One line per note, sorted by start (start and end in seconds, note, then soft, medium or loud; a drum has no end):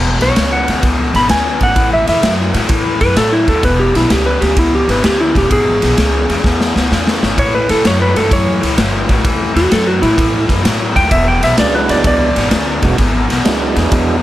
0.00 0.16 E1 medium
0.00 0.17 E2 medium
0.00 0.17 B2 medium
0.20 0.34 B1 medium
0.20 0.33 E2 medium
0.20 0.35 B2 medium
0.20 0.52 C#5 loud
0.20 snare soft
0.20 ride medium
0.34 0.62 C#2 loud
0.34 0.64 E2 medium
0.34 0.64 C#3 loud
0.34 snare loud
0.34 ride medium
0.53 1.13 F#5 medium
0.67 0.81 D2 medium
0.67 0.80 E2 medium
0.67 0.81 C#3 medium
0.67 snare soft
0.67 ride medium
0.82 1.09 C#2 medium
0.82 1.11 E2 medium
0.82 1.11 B2 medium
0.82 kick loud
0.82 snare soft
0.82 ride medium
1.13 1.27 G#1 medium
1.13 1.26 E2 medium
1.13 1.27 B2 medium
1.13 1.30 B5 medium
1.13 snare soft
1.13 ride medium
1.27 1.56 D2 loud
1.27 1.57 E2 medium
1.27 1.57 C#3 loud
1.27 1.60 G#5 medium
1.27 snare loud
1.27 ride medium
1.59 1.76 G#1 medium
1.59 1.74 E2 medium
1.59 1.74 C#3 medium
1.59 kick medium
1.59 snare soft
1.59 ride medium
1.63 1.92 F#5 medium
1.75 2.03 A1 medium
1.75 2.04 A2 medium
1.75 2.04 E3 loud
1.75 kick loud
1.75 ride medium
1.93 2.08 E5 medium
2.06 2.20 E2 medium
2.06 2.21 A2 medium
2.06 2.21 E3 medium
2.06 2.33 E5 medium
2.06 snare soft
2.06 ride medium
2.22 2.49 F#2 medium
2.22 2.51 A2 medium
2.22 2.51 F#3 medium
2.22 snare loud
2.22 ride medium
2.54 2.68 A2 medium
2.54 2.67 A2 medium
2.54 2.68 F#3 medium
2.54 snare soft
2.54 ride medium
2.69 2.98 A2 medium
2.69 2.96 A2 medium
2.69 2.98 E3 medium
2.69 kick loud
2.69 snare soft
2.69 ride medium
3.00 3.14 F#2 medium
3.00 3.15 A2 medium
3.00 3.15 E3 medium
3.00 3.16 B4 loud
3.00 kick medium
3.00 snare soft
3.00 ride medium
3.16 3.44 A2 medium
3.16 3.43 A2 loud
3.16 3.44 F#3 medium
3.16 3.32 A4 medium
3.16 snare loud
3.16 ride medium
3.33 3.47 E4 medium
3.47 3.60 D#2 medium
3.47 3.61 A2 medium
3.47 3.61 F#3 medium
3.47 3.64 A4 medium
3.47 kick medium
3.47 snare soft
3.47 ride medium
3.63 3.89 E1 medium
3.63 3.91 E2 medium
3.63 3.92 B2 medium
3.63 3.79 B4 loud
3.63 kick loud
3.63 snare soft
3.63 ride medium
3.80 3.94 G4 medium
3.93 4.07 B1 medium
3.93 4.07 E2 medium
3.93 4.08 B2 medium
3.93 4.10 E4 medium
3.93 snare soft
3.93 ride medium
4.08 4.36 C#2 medium
4.08 4.37 E2 medium
4.08 4.38 C#3 loud
4.08 4.26 G4 medium
4.08 snare loud
4.08 ride medium
4.26 4.41 B4 loud
4.40 4.54 D2 medium
4.40 4.54 E2 medium
4.40 4.55 C#3 medium
4.40 4.56 G4 medium
4.40 snare soft
4.40 ride medium
4.55 4.83 C#2 medium
4.55 4.84 E2 medium
4.55 4.84 B2 loud
4.55 4.73 E4 medium
4.55 kick loud
4.55 snare soft
4.55 ride medium
4.75 4.89 G4 medium
4.86 5.01 G#1 medium
4.86 5.00 E2 medium
4.86 5.01 B2 medium
4.86 snare soft
4.86 ride medium
4.90 5.04 B4 medium
5.02 5.30 D2 medium
5.02 5.31 E2 medium
5.02 5.31 C#3 medium
5.02 5.19 G4 medium
5.02 snare loud
5.02 ride medium
5.21 5.35 E4 medium
5.34 5.48 E1 medium
5.34 5.48 E2 medium
5.34 5.48 C#3 medium
5.34 5.51 G4 medium
5.34 kick medium
5.34 snare soft
5.34 ride medium
5.49 5.77 G#1 medium
5.49 5.78 E2 medium
5.49 5.78 B2 loud
5.49 6.87 G#4 loud
5.49 kick loud
5.49 ride medium
5.81 5.95 B1 medium
5.81 5.95 E2 medium
5.81 5.96 B2 medium
5.81 snare soft
5.81 ride medium
5.96 6.24 C#2 medium
5.96 6.25 E2 medium
5.96 6.25 C#3 medium
5.96 snare loud
5.96 ride medium
6.28 6.42 E2 medium
6.28 6.42 C#3 medium
6.28 snare soft
6.28 ride medium
6.43 6.72 E2 medium
6.43 6.70 E2 medium
6.43 6.72 B2 medium
6.43 kick loud
6.43 snare medium
6.61 snare medium
6.74 6.88 C#2 medium
6.74 6.88 E2 medium
6.74 6.89 B2 medium
6.74 snare medium
6.90 7.19 E2 medium
6.90 7.17 E2 medium
6.90 7.19 C#3 loud
6.90 snare medium
7.07 snare loud
7.21 7.35 G#1 medium
7.21 7.35 E2 medium
7.21 7.35 C#3 medium
7.21 snare medium
7.36 7.64 A1 medium
7.36 7.65 A2 medium
7.36 7.65 E3 medium
7.36 7.53 C#5 medium
7.36 kick loud
7.36 ride medium
7.55 7.69 B4 medium
7.68 7.82 E2 medium
7.68 7.82 A2 medium
7.68 7.82 E3 medium
7.68 7.84 A4 medium
7.68 snare soft
7.68 ride medium
7.84 8.11 F#2 loud
7.84 8.12 A2 medium
7.84 8.12 F#3 loud
7.84 8.01 C#5 loud
7.84 snare loud
7.84 ride medium
8.02 8.16 B4 medium
8.15 8.28 G2 medium
8.15 8.28 A2 medium
8.15 8.29 F#3 medium
8.15 8.31 A4 medium
8.15 snare soft
8.15 ride medium
8.29 8.57 F#2 loud
8.29 8.58 A2 medium
8.29 8.59 E3 medium
8.29 9.22 C#5 medium
8.29 kick loud
8.29 snare soft
8.29 ride medium
8.61 8.75 C#2 medium
8.61 8.74 A2 medium
8.61 8.76 E3 medium
8.61 snare soft
8.61 ride medium
8.75 9.04 G1 medium
8.75 9.05 A2 medium
8.75 9.05 F#3 loud
8.75 snare loud
8.75 ride medium
9.08 9.22 A1 medium
9.08 9.22 A2 medium
9.08 9.22 F#3 medium
9.08 kick medium
9.08 snare soft
9.08 ride medium
9.23 9.51 C#2 medium
9.23 9.52 A2 medium
9.23 9.52 E3 medium
9.23 kick loud
9.23 ride medium
9.53 9.68 E2 medium
9.53 9.67 A2 medium
9.53 9.68 E3 medium
9.53 9.71 F#4 medium
9.53 snare soft
9.53 ride medium
9.68 9.98 F#2 medium
9.68 9.98 A2 medium
9.68 9.98 F#3 medium
9.68 9.86 A4 medium
9.68 snare loud
9.68 ride medium
9.87 10.02 F#4 medium
10.01 10.15 A2 medium
10.01 10.15 F#3 medium
10.01 10.47 E4 loud
10.01 snare soft
10.01 ride medium
10.16 10.45 A2 medium
10.16 10.44 A2 loud
10.16 10.45 E3 medium
10.16 kick loud
10.16 snare soft
10.16 ride medium
10.47 10.62 F#2 medium
10.47 10.61 A2 medium
10.47 10.62 E3 medium
10.47 kick medium
10.47 snare soft
10.47 ride medium
10.62 10.92 A2 medium
10.62 10.91 A2 loud
10.62 10.92 F#3 loud
10.62 snare loud
10.62 ride medium
10.94 11.13 D#2 medium
10.94 11.09 A2 medium
10.94 11.09 F#3 medium
10.94 11.11 G5 loud
10.94 kick medium
10.94 snare soft
10.94 ride medium
11.09 11.37 E1 medium
11.09 11.38 E2 medium
11.09 11.39 B2 loud
11.09 11.27 E5 loud
11.09 kick loud
11.09 ride medium
11.28 11.43 G5 medium
11.39 11.55 B1 medium
11.39 11.55 E2 medium
11.39 11.55 B2 medium
11.39 snare soft
11.39 ride medium
11.44 11.58 E5 medium
11.57 11.84 C#2 loud
11.57 11.86 E2 medium
11.57 11.86 C#3 loud
11.57 12.29 F#3 medium
11.57 12.30 G#3 medium
11.57 12.30 B3 medium
11.57 12.30 D4 medium
11.57 12.30 E4 medium
11.57 11.74 D5 medium
11.57 snare loud
11.57 ride medium
11.75 11.89 B4 medium
11.88 12.02 D2 medium
11.88 12.03 E2 medium
11.88 12.03 C#3 medium
11.88 12.05 D5 medium
11.88 snare soft
11.88 ride medium
12.04 12.31 C#2 loud
12.04 12.33 E2 medium
12.04 12.33 B2 medium
12.04 12.97 D5 loud
12.04 kick loud
12.04 ride medium
12.35 12.49 G#1 medium
12.35 12.49 E2 medium
12.35 12.50 B2 medium
12.35 snare soft
12.35 ride medium
12.50 12.77 D2 medium
12.50 12.79 E2 medium
12.50 12.79 C#3 medium
12.50 snare loud
12.50 ride medium
12.82 12.96 E1 loud
12.82 12.96 E2 medium
12.82 12.97 C#3 medium
12.82 12.97 F#3 medium
12.82 12.97 G#3 medium
12.82 12.97 B3 medium
12.82 12.97 D4 medium
12.82 12.98 F#4 medium
12.82 kick medium
12.82 snare soft
12.82 ride medium
12.97 13.24 G#1 loud
12.97 13.26 E2 medium
12.97 13.26 B2 medium
12.97 kick loud
12.97 snare soft
12.97 ride medium
13.29 13.42 B1 medium
13.29 13.43 E2 medium
13.29 13.43 B2 medium
13.29 snare soft
13.29 ride medium
13.44 13.71 C#2 loud
13.44 13.73 E2 medium
13.44 13.73 C#3 medium
13.44 14.16 F#3 medium
13.44 14.17 G#3 medium
13.44 14.17 B3 medium
13.44 14.17 D4 medium
13.44 14.17 E4 medium
13.44 snare loud
13.44 ride medium
13.75 13.89 E2 medium
13.75 13.90 C#3 medium
13.75 snare soft
13.75 ride medium
13.90 14.20 E2 medium
13.90 14.18 E2 medium
13.90 14.20 B2 medium
13.90 kick loud
13.90 snare soft
13.90 ride medium